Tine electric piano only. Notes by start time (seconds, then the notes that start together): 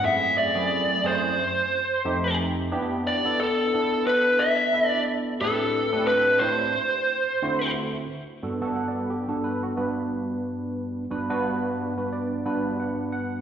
0.03 F#2 A3 C4 E4 G#4
0.55 F#2 A3 C4 E4 G#4
1.04 F#2 A3 C4 E4 G#4
2.05 F2 A3 C4 D#4 G4
2.71 B3 D4 E4 G4
3.25 B3 D4 E4 A4
3.74 B3 D4 E4 A4
4.73 B3 D4 E4 A4
5.41 A2 C4 D4 E4 G4 B4
5.92 A2 C4 D4 E4 G4 B4
6.41 A2 C4 D4 E4 G4 D5
7.42 D3 A3 C4 E4 F#4 C5
8.42 G2 B3 D4 F#4 A4
8.61 G2 B3 D4 F#4 A4
8.76 F#5
8.88 D5
8.99 B4
9.10 G4
9.28 G2 B3 D4 F#4 A4
9.44 B4
9.63 F#4
9.77 G2 B3 D4 F#4 B4
11.11 G2 B3 D4 F#4 B4
11.29 G2 B3 D4 F#4 B4
11.97 G2 B3 D4 F#4 B4
12.13 D5
12.45 G2 B3 D4 F#4 B4
12.80 F#5
13.12 F#5